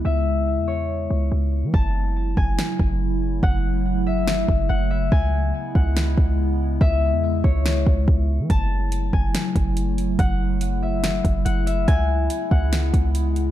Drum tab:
HH |--------|--------|--------|--------|
SD |--------|----o---|----o---|----o---|
BD |--------|o--o-o--|o----o--|o--o-o--|

HH |--------|x-x-xxxx|x-x-xxxx|x-x-xxxx|
SD |----o---|----o---|----o---|----o---|
BD |o--o-oo-|o--o-o--|o----o--|o--o-o--|